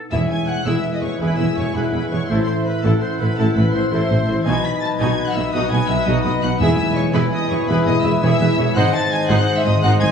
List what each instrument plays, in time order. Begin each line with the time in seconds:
Already playing: harp B3 A4
0.11 double bass section E1, tuba E1, cello section E2, timpani E2, harp E3, french horn section G#3 E4, viola section E4 G#4, clarinet C#5, violin section E5 E6, flute E5, trumpet section E5
0.21 harp B3
0.30 harp E4, violin section G#5 G#6, flute G#5
0.39 harp G#4
0.48 harp B4, violin section F#5 F#6, flute F#5
0.57 harp E5
0.65 tuba E1, double bass section E1, cello section E2, french horn section G#3 E4, viola section E4 G#4, clarinet B4, trumpet section E5, violin section E5 E6, flute E5, harp G#5
0.76 harp B5
0.84 harp E5
0.94 harp G#4, flute D#5, violin section D#5 D#6
1.02 tuba E1, double bass section E1, cello section E2, viola section E4 G#4, harp E4, violin section C#5 C#6, flute C#5
1.12 harp B3
1.20 double bass section E1, tuba E1, cello section E2, harp E3, french horn section G#3 E4, viola section E4 G#4, flute B4, violin section B4 B5, trumpet section E5, clarinet G#5
1.30 harp E4
1.37 double bass section E1, tuba E1, cello section E2, harp B3, viola section E4 G#4, violin section E5 E6, flute E5
1.48 harp G#4
1.57 tuba E1, double bass section E1, cello section E2, viola section E4 G#4, harp B4, flute C#5, violin section C#5 C#6
1.66 harp E5
1.74 tuba E1, double bass section E1, cello section E2, french horn section G#3 E4, viola section E4 G#4, flute B4, violin section B4 B5, trumpet section E5, clarinet F#5, harp G#5
1.84 harp B5
1.92 double bass section E1, tuba E1, cello section E2, viola section E4 G#4, flute B4, violin section B4 B5, harp E5
2.02 harp G#4
2.10 tuba E1, double bass section E1, cello section E2, harp E4, viola section E4 G#4, flute C#5, violin section C#5 C#6
2.20 harp B3
2.28 double bass section A1, tuba A1, cello section A2, harp A2, french horn section A3 E4, viola section E4 A4, flute C5, violin section C5 C6, trumpet section E5, clarinet E5
2.39 harp E3
2.46 harp C4, flute C5, violin section C5 C6
2.56 harp E4
2.65 harp A4, flute B4, violin section B4 B5
2.74 harp C5
2.83 tuba A1, double bass section A1, cello section A2, french horn section A3 E4, viola section E4 A4, flute A4, violin section A4 A5, harp E5, trumpet section E5, clarinet F#5
2.92 harp A5
3.01 harp C5, flute C5, violin section C5 C6
3.11 harp E4
3.19 tuba A1, double bass section A1, cello section A2, harp C4, viola section E4 A4, flute B4, violin section B4 B5
3.29 harp E3
3.37 double bass section A1, tuba A1, harp A2, cello section A2, french horn section A3 E4, viola section E4 A4, flute A4, violin section A4 A5, trumpet section E5
3.47 harp C4
3.55 tuba A1, double bass section A1, cello section A2, harp E3, viola section E4 A4, flute B4, violin section B4 B5
3.65 harp E4
3.73 tuba A1, double bass section A1, cello section A2, viola section E4 A4, harp A4, flute C5, violin section C5 C6
3.84 harp C5
3.91 tuba A1, double bass section A1, cello section A2, french horn section A3 E4, viola section E4 A4, flute C5, violin section C5 C6, trumpet section E5, harp E5, clarinet E5
4.01 harp A5
4.09 tuba A1, double bass section A1, cello section A2, viola section E4 A4, harp C5
4.19 harp E4
4.28 double bass section A1, tuba A1, cello section A2, harp C4, viola section E4 A4
4.37 harp E3
4.44 double bass section B1, tuba B1, harp B2, cello section B2, french horn section F#3 D#4, viola section D#4 F#4, trumpet section B4, clarinet D#5, violin section G#5 G#6, flute G#5
4.55 harp F#3
4.64 harp B3, flute B5, violin section B5 B6
4.73 harp D#4
4.81 harp F#4, flute A5, violin section A5 A6
4.91 harp B4
4.99 tuba B1, double bass section B1, cello section B2, french horn section F#3 D#4, viola section D#4 F#4, trumpet section B4, harp D#5, flute G#5, violin section G#5 G#6
5.09 harp F#5
5.17 harp B4
5.26 harp D#4, violin section F#5 F#6, flute F#5
5.34 tuba B1, double bass section B1, cello section B2, harp B3, viola section D#4 F#4, flute E5, violin section E5 E6
5.44 harp F#3
5.52 tuba B1, double bass section B1, harp B2, cello section B2, french horn section F#3 D#4, viola section D#4 F#4, trumpet section B4, flute D#5, violin section D#5 D#6, clarinet F#5
5.62 harp B3
5.70 double bass section B1, tuba B1, cello section B2, harp F#3, viola section D#4 F#4, flute G#5, violin section G#5 G#6
5.80 harp D#4
5.88 tuba B1, double bass section B1, cello section B2, viola section D#4 F#4, harp F#4, flute E5, violin section E5 E6
5.97 harp B4
6.05 double bass section B1, tuba B1, cello section B2, french horn section F#3 D#4, viola section D#4 F#4, trumpet section B4, violin section D#5 D#6, harp D#5, flute D#5
6.15 harp F#5
6.24 double bass section B1, tuba B1, cello section B2, viola section D#4 F#4, harp B4, violin section D#5 D#6, flute D#5
6.34 harp D#4
6.42 tuba B1, double bass section B1, cello section B2, harp B3, viola section D#4 F#4, violin section F#5 F#6, flute F#5
6.52 harp F#3
6.60 double bass section E1, tuba E1, timpani E2, harp E2, cello section E2, french horn section G#3 E4, viola section E4 G#4, trumpet section B4, violin section E5 E6, flute E5, clarinet G#5
6.70 harp B2
6.77 harp B3, violin section E5 E6, flute E5
6.87 harp E4
6.95 harp G#4, violin section C#5 C#6, flute C#5
7.05 harp B4
7.13 double bass section E1, tuba E1, cello section E2, french horn section G#3 E4, viola section E4 G#4, violin section B4 B5, flute B4, trumpet section B4, harp E5, clarinet G#5
7.23 harp G#5
7.31 harp B4, violin section D#5 D#6, flute D#5
7.41 harp E4
7.49 double bass section E1, tuba E1, cello section E2, harp B3, viola section E4 G#4, flute C#5, violin section C#5 C#6
7.59 harp B2
7.67 double bass section E1, tuba E1, cello section E2, harp E2, french horn section G#3 E4, viola section E4 G#4, trumpet section B4, flute B4, violin section B4 B5, clarinet E5
7.77 harp B3
7.85 tuba E1, double bass section E1, cello section E2, harp B2, viola section E4 G#4, flute D#5, violin section D#5 D#6
7.95 harp E4
8.03 double bass section E1, tuba E1, cello section E2, viola section E4 G#4, harp G#4, violin section E5 E6, flute E5
8.13 harp B4
8.21 double bass section E1, tuba E1, cello section E2, french horn section G#3 E4, viola section E4 G#4, trumpet section B4, clarinet C#5, harp E5, flute E5, violin section E5 E6
8.31 harp G#5
8.39 double bass section E1, tuba E1, cello section E2, viola section E4 G#4, harp B4, clarinet B4
8.49 harp E4
8.57 double bass section E1, tuba E1, cello section E2, harp B3, viola section E4 G#4, clarinet C#5
8.67 harp B2
8.75 double bass section G#1, tuba G#1, cello section G#2, harp G#2, french horn section G#3 D#4, viola section D#4 C5, trumpet section C5, clarinet D#5, flute F#5, violin section F#5 F#6
8.85 harp D#3
8.93 harp C4, flute A5, violin section A5 A6
9.02 harp D#4
9.11 harp G#4, violin section G#5 G#6, flute G#5
9.20 harp C5
9.28 tuba G#1, double bass section G#1, cello section G#2, viola section D#4 C5, clarinet C5, harp D#5, violin section F#5 F#6, flute F#5
9.39 harp G#5
9.48 harp C5
9.56 harp D#4, flute E5, violin section E5 E6
9.64 tuba G#1, double bass section G#1, cello section G#2, harp C4, viola section D#4 C5, violin section D#5 D#6, flute D#5
9.74 harp D#3
9.82 double bass section G#1, tuba G#1, cello section G#2, harp G#2, viola section D#4 C5, clarinet D#5, violin section F#5 F#6, flute F#5
9.92 harp C4
10.01 double bass section G#1, tuba G#1, cello section G#2, harp D#3, viola section D#4 C5, flute G#5, violin section G#5 G#6